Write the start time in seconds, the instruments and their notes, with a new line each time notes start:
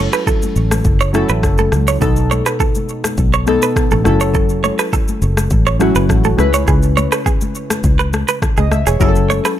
Already playing: synth keys F#3 C#4 E4 A4
0.13 clean electric guitar B4, cross-stick, shaker
0.27 clean electric guitar A4, kick, low conga, shaker
0.42 high conga, shaker
0.56 fingered electric bass A1, shaker
0.71 cross-stick, high conga, shaker
0.85 fingered electric bass F#1, kick, shaker
1.01 clean electric guitar C#5, shaker
1.13 synth keys F#3 C#4 E4 A4, cross-stick, high conga, shaker
1.29 fingered electric bass A1, clean electric guitar B4, shaker
1.43 fingered electric bass F#1, kick, cross-stick, shaker
1.58 clean electric guitar A4, high conga, shaker
1.72 fingered electric bass C#2, cross-stick, high conga, low conga, shaker
1.88 clean electric guitar C#5, shaker
2.00 fingered electric bass B1, synth keys B2 B3 D#4 A4, clean electric guitar A4, kick, low conga, shaker
2.16 shaker
2.31 clean electric guitar C#5, high conga, shaker
2.46 clean electric guitar B4, cross-stick, shaker
2.60 clean electric guitar A4, kick, low conga, shaker
2.75 high conga, shaker
2.89 shaker
3.04 cross-stick, high conga, shaker
3.17 fingered electric bass B1, kick, shaker
3.33 clean electric guitar C#5, shaker
3.46 synth keys B2 B3 D#4 A4, cross-stick, high conga, shaker
3.62 clean electric guitar B4, shaker
3.76 kick, cross-stick, shaker
3.91 fingered electric bass A1, clean electric guitar A4, high conga, shaker
4.04 fingered electric bass F#1, synth keys F#3 C#4 E4 A4, cross-stick, high conga, low conga, shaker
4.21 clean electric guitar C#5, shaker
4.34 clean electric guitar A4, kick, low conga, shaker
4.49 shaker
4.64 clean electric guitar C#5, high conga, shaker
4.79 clean electric guitar B4, cross-stick, shaker
4.93 clean electric guitar A4, kick, low conga, shaker
5.08 high conga, shaker
5.22 fingered electric bass F#1, shaker
5.37 cross-stick, high conga, shaker
5.50 fingered electric bass A1, kick, shaker
5.67 clean electric guitar C#5, shaker
5.79 synth keys F#3 C#4 E4 F#4, cross-stick, high conga, shaker
5.95 fingered electric bass F#1, clean electric guitar B4, shaker
6.09 fingered electric bass A1, kick, cross-stick, shaker
6.24 clean electric guitar A4, high conga, shaker
6.37 fingered electric bass C#2, synth keys C#3 C#4 E4 B4, cross-stick, high conga, low conga, shaker
6.54 clean electric guitar C#5, shaker
6.67 fingered electric bass C#2, clean electric guitar G#4, kick, low conga, shaker
6.82 shaker
6.97 clean electric guitar C#5, high conga, shaker
7.12 clean electric guitar B4, cross-stick, shaker
7.26 clean electric guitar G#4, kick, low conga, shaker
7.41 high conga, shaker
7.55 shaker
7.70 cross-stick, high conga, shaker
7.84 fingered electric bass C#2, kick, shaker
7.99 clean electric guitar B4, shaker
8.13 cross-stick, high conga, shaker
8.28 clean electric guitar B4, shaker
8.42 kick, cross-stick, low conga, shaker
8.57 fingered electric bass C#2, clean electric guitar G#4, synth keys D#5, high conga, shaker
8.71 synth keys E5, cross-stick, high conga, low conga, shaker
8.87 fingered electric bass E1, clean electric guitar G#4, synth keys C#5, shaker
9.00 fingered electric bass F#1, synth keys F#3 C#4 E4 G#4, clean electric guitar A4, kick, low conga, shaker
9.09 synth keys A4
9.15 shaker
9.30 clean electric guitar C#5, high conga, shaker
9.45 clean electric guitar B4, cross-stick, shaker